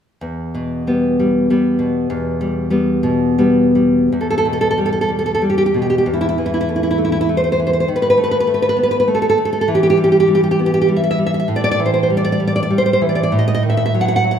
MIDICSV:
0, 0, Header, 1, 2, 480
1, 0, Start_track
1, 0, Key_signature, 1, "minor"
1, 0, Tempo, 671892
1, 154, Time_signature, 3, 2, 24, 8
1, 632, Tempo, 614125
1, 2072, Tempo, 662252
1, 2552, Tempo, 747198
1, 3032, Tempo, 643777
1, 4472, Tempo, 600601
1, 8792, Tempo, 612245
1, 11079, End_track
2, 0, Start_track
2, 0, Title_t, "Nylon-string guitar"
2, 0, Program_c, 0, 24
2, 152, Note_on_c, 0, 40, 36
2, 389, Note_on_c, 0, 47, 30
2, 623, Note_on_c, 0, 55, 30
2, 626, Note_on_c, 0, 59, 32
2, 865, Note_off_c, 0, 55, 0
2, 874, Note_on_c, 0, 55, 31
2, 1106, Note_off_c, 0, 55, 0
2, 1109, Note_off_c, 0, 59, 0
2, 1115, Note_on_c, 0, 55, 33
2, 1119, Note_on_c, 0, 59, 36
2, 1121, Note_off_c, 0, 47, 0
2, 1339, Note_on_c, 0, 47, 31
2, 1558, Note_off_c, 0, 40, 0
2, 1581, Note_on_c, 0, 40, 44
2, 1793, Note_off_c, 0, 55, 0
2, 1794, Note_off_c, 0, 59, 0
2, 1822, Note_on_c, 0, 55, 36
2, 2044, Note_off_c, 0, 55, 0
2, 2054, Note_on_c, 0, 55, 35
2, 2059, Note_on_c, 0, 59, 37
2, 2062, Note_off_c, 0, 47, 0
2, 2292, Note_on_c, 0, 47, 35
2, 2540, Note_off_c, 0, 55, 0
2, 2541, Note_off_c, 0, 59, 0
2, 2548, Note_on_c, 0, 55, 38
2, 2550, Note_on_c, 0, 59, 42
2, 2778, Note_off_c, 0, 55, 0
2, 2785, Note_on_c, 0, 55, 35
2, 3002, Note_off_c, 0, 40, 0
2, 3005, Note_off_c, 0, 59, 0
2, 3024, Note_on_c, 0, 40, 37
2, 3026, Note_off_c, 0, 47, 0
2, 3027, Note_off_c, 0, 55, 0
2, 3085, Note_on_c, 0, 69, 45
2, 3148, Note_off_c, 0, 69, 0
2, 3157, Note_on_c, 0, 69, 53
2, 3203, Note_off_c, 0, 69, 0
2, 3212, Note_on_c, 0, 69, 57
2, 3268, Note_on_c, 0, 47, 31
2, 3274, Note_off_c, 0, 69, 0
2, 3325, Note_on_c, 0, 69, 50
2, 3376, Note_off_c, 0, 69, 0
2, 3385, Note_on_c, 0, 69, 53
2, 3449, Note_off_c, 0, 69, 0
2, 3457, Note_on_c, 0, 69, 54
2, 3510, Note_on_c, 0, 55, 30
2, 3515, Note_off_c, 0, 69, 0
2, 3569, Note_on_c, 0, 69, 50
2, 3611, Note_off_c, 0, 69, 0
2, 3620, Note_on_c, 0, 69, 50
2, 3676, Note_off_c, 0, 69, 0
2, 3684, Note_on_c, 0, 69, 53
2, 3731, Note_off_c, 0, 55, 0
2, 3740, Note_on_c, 0, 55, 28
2, 3748, Note_off_c, 0, 69, 0
2, 3816, Note_on_c, 0, 69, 50
2, 3859, Note_off_c, 0, 69, 0
2, 3868, Note_on_c, 0, 69, 48
2, 3925, Note_off_c, 0, 69, 0
2, 3934, Note_on_c, 0, 69, 53
2, 3978, Note_off_c, 0, 55, 0
2, 3987, Note_off_c, 0, 47, 0
2, 3987, Note_on_c, 0, 55, 31
2, 3992, Note_off_c, 0, 69, 0
2, 4046, Note_on_c, 0, 67, 44
2, 4098, Note_off_c, 0, 67, 0
2, 4107, Note_on_c, 0, 67, 50
2, 4159, Note_off_c, 0, 67, 0
2, 4168, Note_on_c, 0, 67, 49
2, 4230, Note_off_c, 0, 67, 0
2, 4230, Note_on_c, 0, 47, 29
2, 4287, Note_on_c, 0, 67, 44
2, 4337, Note_off_c, 0, 67, 0
2, 4346, Note_on_c, 0, 67, 47
2, 4399, Note_off_c, 0, 67, 0
2, 4408, Note_on_c, 0, 67, 50
2, 4438, Note_off_c, 0, 40, 0
2, 4440, Note_off_c, 0, 55, 0
2, 4466, Note_on_c, 0, 40, 37
2, 4470, Note_off_c, 0, 67, 0
2, 4471, Note_off_c, 0, 47, 0
2, 4526, Note_on_c, 0, 64, 44
2, 4576, Note_off_c, 0, 64, 0
2, 4585, Note_on_c, 0, 64, 53
2, 4638, Note_off_c, 0, 64, 0
2, 4648, Note_on_c, 0, 64, 54
2, 4713, Note_off_c, 0, 64, 0
2, 4722, Note_on_c, 0, 52, 30
2, 4784, Note_on_c, 0, 64, 47
2, 4839, Note_off_c, 0, 64, 0
2, 4848, Note_on_c, 0, 64, 48
2, 4893, Note_off_c, 0, 64, 0
2, 4903, Note_on_c, 0, 64, 55
2, 4957, Note_off_c, 0, 64, 0
2, 4968, Note_on_c, 0, 57, 31
2, 5024, Note_on_c, 0, 64, 45
2, 5072, Note_off_c, 0, 64, 0
2, 5082, Note_on_c, 0, 64, 48
2, 5133, Note_off_c, 0, 64, 0
2, 5142, Note_on_c, 0, 64, 51
2, 5193, Note_off_c, 0, 57, 0
2, 5196, Note_off_c, 0, 64, 0
2, 5202, Note_on_c, 0, 57, 31
2, 5254, Note_on_c, 0, 64, 48
2, 5305, Note_off_c, 0, 64, 0
2, 5314, Note_on_c, 0, 64, 50
2, 5373, Note_off_c, 0, 64, 0
2, 5383, Note_on_c, 0, 64, 53
2, 5435, Note_off_c, 0, 52, 0
2, 5439, Note_off_c, 0, 64, 0
2, 5440, Note_off_c, 0, 57, 0
2, 5450, Note_on_c, 0, 57, 31
2, 5514, Note_on_c, 0, 72, 51
2, 5558, Note_off_c, 0, 72, 0
2, 5568, Note_on_c, 0, 72, 51
2, 5622, Note_off_c, 0, 72, 0
2, 5633, Note_on_c, 0, 72, 55
2, 5685, Note_off_c, 0, 72, 0
2, 5693, Note_on_c, 0, 52, 29
2, 5750, Note_on_c, 0, 72, 49
2, 5794, Note_off_c, 0, 72, 0
2, 5803, Note_on_c, 0, 72, 46
2, 5849, Note_off_c, 0, 72, 0
2, 5858, Note_on_c, 0, 72, 48
2, 5884, Note_off_c, 0, 40, 0
2, 5896, Note_off_c, 0, 57, 0
2, 5919, Note_off_c, 0, 52, 0
2, 5919, Note_off_c, 0, 72, 0
2, 5922, Note_on_c, 0, 51, 37
2, 5982, Note_on_c, 0, 71, 52
2, 6024, Note_off_c, 0, 71, 0
2, 6034, Note_on_c, 0, 71, 55
2, 6086, Note_off_c, 0, 71, 0
2, 6096, Note_on_c, 0, 71, 62
2, 6155, Note_on_c, 0, 57, 31
2, 6158, Note_off_c, 0, 71, 0
2, 6205, Note_on_c, 0, 71, 56
2, 6257, Note_off_c, 0, 71, 0
2, 6267, Note_on_c, 0, 71, 55
2, 6329, Note_off_c, 0, 71, 0
2, 6339, Note_on_c, 0, 71, 60
2, 6384, Note_off_c, 0, 57, 0
2, 6393, Note_on_c, 0, 57, 31
2, 6398, Note_off_c, 0, 71, 0
2, 6449, Note_on_c, 0, 71, 53
2, 6504, Note_off_c, 0, 71, 0
2, 6514, Note_on_c, 0, 71, 56
2, 6559, Note_off_c, 0, 71, 0
2, 6568, Note_on_c, 0, 71, 56
2, 6628, Note_on_c, 0, 59, 34
2, 6631, Note_off_c, 0, 71, 0
2, 6682, Note_on_c, 0, 71, 55
2, 6734, Note_off_c, 0, 71, 0
2, 6744, Note_on_c, 0, 71, 53
2, 6804, Note_off_c, 0, 71, 0
2, 6813, Note_on_c, 0, 71, 58
2, 6867, Note_off_c, 0, 57, 0
2, 6874, Note_off_c, 0, 71, 0
2, 6876, Note_on_c, 0, 57, 32
2, 6932, Note_on_c, 0, 69, 50
2, 6981, Note_off_c, 0, 69, 0
2, 6991, Note_on_c, 0, 69, 54
2, 7042, Note_off_c, 0, 69, 0
2, 7051, Note_on_c, 0, 69, 56
2, 7108, Note_off_c, 0, 57, 0
2, 7114, Note_off_c, 0, 69, 0
2, 7117, Note_on_c, 0, 57, 31
2, 7177, Note_on_c, 0, 69, 50
2, 7227, Note_off_c, 0, 69, 0
2, 7237, Note_on_c, 0, 69, 53
2, 7295, Note_off_c, 0, 69, 0
2, 7305, Note_on_c, 0, 69, 53
2, 7326, Note_off_c, 0, 51, 0
2, 7353, Note_off_c, 0, 59, 0
2, 7357, Note_off_c, 0, 57, 0
2, 7358, Note_on_c, 0, 52, 43
2, 7360, Note_off_c, 0, 69, 0
2, 7413, Note_on_c, 0, 67, 52
2, 7470, Note_off_c, 0, 67, 0
2, 7479, Note_on_c, 0, 67, 59
2, 7524, Note_off_c, 0, 67, 0
2, 7534, Note_on_c, 0, 67, 63
2, 7593, Note_on_c, 0, 55, 35
2, 7596, Note_off_c, 0, 67, 0
2, 7645, Note_on_c, 0, 67, 57
2, 7700, Note_off_c, 0, 67, 0
2, 7710, Note_on_c, 0, 67, 58
2, 7764, Note_off_c, 0, 67, 0
2, 7774, Note_on_c, 0, 67, 60
2, 7826, Note_off_c, 0, 55, 0
2, 7836, Note_on_c, 0, 55, 34
2, 7839, Note_off_c, 0, 67, 0
2, 7893, Note_on_c, 0, 67, 57
2, 7953, Note_off_c, 0, 67, 0
2, 7963, Note_on_c, 0, 67, 54
2, 8013, Note_off_c, 0, 67, 0
2, 8023, Note_on_c, 0, 67, 62
2, 8085, Note_off_c, 0, 67, 0
2, 8089, Note_on_c, 0, 59, 33
2, 8143, Note_on_c, 0, 67, 53
2, 8195, Note_off_c, 0, 67, 0
2, 8205, Note_on_c, 0, 67, 56
2, 8257, Note_off_c, 0, 67, 0
2, 8266, Note_on_c, 0, 67, 58
2, 8311, Note_off_c, 0, 55, 0
2, 8320, Note_on_c, 0, 55, 35
2, 8325, Note_off_c, 0, 67, 0
2, 8386, Note_on_c, 0, 76, 52
2, 8433, Note_off_c, 0, 76, 0
2, 8442, Note_on_c, 0, 76, 55
2, 8489, Note_off_c, 0, 76, 0
2, 8499, Note_on_c, 0, 76, 59
2, 8551, Note_off_c, 0, 55, 0
2, 8558, Note_off_c, 0, 76, 0
2, 8561, Note_on_c, 0, 55, 32
2, 8626, Note_on_c, 0, 76, 50
2, 8677, Note_off_c, 0, 76, 0
2, 8686, Note_on_c, 0, 76, 50
2, 8721, Note_off_c, 0, 76, 0
2, 8730, Note_on_c, 0, 76, 52
2, 8763, Note_off_c, 0, 52, 0
2, 8792, Note_off_c, 0, 76, 0
2, 8795, Note_off_c, 0, 55, 0
2, 8795, Note_off_c, 0, 59, 0
2, 8797, Note_on_c, 0, 45, 42
2, 8860, Note_on_c, 0, 74, 58
2, 8913, Note_off_c, 0, 74, 0
2, 8922, Note_on_c, 0, 74, 69
2, 8972, Note_off_c, 0, 74, 0
2, 8981, Note_on_c, 0, 74, 71
2, 9035, Note_off_c, 0, 74, 0
2, 9045, Note_on_c, 0, 52, 37
2, 9092, Note_on_c, 0, 72, 46
2, 9146, Note_off_c, 0, 72, 0
2, 9156, Note_on_c, 0, 72, 48
2, 9213, Note_off_c, 0, 72, 0
2, 9229, Note_on_c, 0, 72, 49
2, 9279, Note_off_c, 0, 72, 0
2, 9284, Note_on_c, 0, 55, 35
2, 9339, Note_on_c, 0, 74, 54
2, 9388, Note_off_c, 0, 74, 0
2, 9397, Note_on_c, 0, 74, 63
2, 9449, Note_off_c, 0, 74, 0
2, 9458, Note_on_c, 0, 74, 61
2, 9508, Note_off_c, 0, 55, 0
2, 9513, Note_off_c, 0, 74, 0
2, 9517, Note_on_c, 0, 55, 37
2, 9577, Note_on_c, 0, 74, 60
2, 9632, Note_off_c, 0, 74, 0
2, 9642, Note_on_c, 0, 74, 60
2, 9687, Note_off_c, 0, 74, 0
2, 9697, Note_on_c, 0, 74, 59
2, 9748, Note_off_c, 0, 55, 0
2, 9751, Note_off_c, 0, 74, 0
2, 9753, Note_off_c, 0, 52, 0
2, 9757, Note_on_c, 0, 55, 34
2, 9817, Note_on_c, 0, 72, 59
2, 9868, Note_off_c, 0, 72, 0
2, 9878, Note_on_c, 0, 72, 53
2, 9927, Note_off_c, 0, 72, 0
2, 9936, Note_on_c, 0, 72, 57
2, 9989, Note_off_c, 0, 72, 0
2, 10001, Note_on_c, 0, 52, 34
2, 10059, Note_on_c, 0, 74, 50
2, 10100, Note_off_c, 0, 74, 0
2, 10110, Note_on_c, 0, 74, 53
2, 10163, Note_off_c, 0, 74, 0
2, 10173, Note_on_c, 0, 74, 60
2, 10191, Note_off_c, 0, 45, 0
2, 10195, Note_off_c, 0, 55, 0
2, 10227, Note_off_c, 0, 74, 0
2, 10230, Note_off_c, 0, 52, 0
2, 10240, Note_on_c, 0, 45, 45
2, 10292, Note_on_c, 0, 75, 55
2, 10347, Note_off_c, 0, 75, 0
2, 10363, Note_on_c, 0, 75, 62
2, 10407, Note_off_c, 0, 75, 0
2, 10417, Note_on_c, 0, 75, 64
2, 10471, Note_off_c, 0, 75, 0
2, 10481, Note_on_c, 0, 51, 33
2, 10535, Note_on_c, 0, 76, 55
2, 10585, Note_off_c, 0, 76, 0
2, 10595, Note_on_c, 0, 76, 55
2, 10652, Note_off_c, 0, 76, 0
2, 10660, Note_on_c, 0, 76, 59
2, 10716, Note_off_c, 0, 76, 0
2, 10729, Note_on_c, 0, 54, 33
2, 10780, Note_on_c, 0, 78, 60
2, 10828, Note_off_c, 0, 78, 0
2, 10838, Note_on_c, 0, 78, 58
2, 10889, Note_off_c, 0, 78, 0
2, 10898, Note_on_c, 0, 78, 64
2, 10953, Note_off_c, 0, 54, 0
2, 10956, Note_off_c, 0, 78, 0
2, 10959, Note_off_c, 0, 51, 0
2, 10962, Note_on_c, 0, 54, 33
2, 11017, Note_on_c, 0, 78, 54
2, 11076, Note_off_c, 0, 78, 0
2, 11079, Note_off_c, 0, 45, 0
2, 11079, Note_off_c, 0, 54, 0
2, 11079, End_track
0, 0, End_of_file